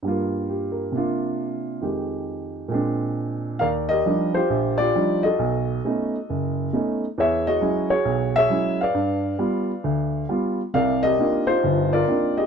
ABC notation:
X:1
M:4/4
L:1/16
Q:"Swing" 1/4=135
K:Eb
V:1 name="Upright piano"
z4 G2 B3 z6 z | z16 | [Bdf]2 [GBe]4 [FGc]4 [FGd]4 [_G=Ae]2- | [_G=Ae]12- [GAe]2 z2 |
[^G^c=e]2 [^FG_e]4 [FGc]4 [Gc=e]4 [=Bd=f]2- | [=Bdf]12- [Bdf]2 z2 | [Bdf]2 [GBe]4 [EFc]4 [FBd]4 [GAe]2 |]
V:2 name="Upright piano"
[G,,G,B,F]8 [C,B,DF]8 | [F,,E,A,G]8 [B,,A,CD]8 | E,,4 [F,G,DE]2 z2 B,,,4 [F,G,DE]2 z2 | =B,,,4 [=A,=B,^C^D]2 z2 ^F,,,4 [A,B,CD]2 z2 |
=E,,4 [^F,^G,^C=E]2 z2 =B,,,4 [F,G,CE]2 z2 | G,,4 [G,=B,F]2 z2 D,,4 [G,B,F]2 z2 | [C,,C,]4 [B,CDEF]2 z2 G,,,4 [B,CDEF]2 z2 |]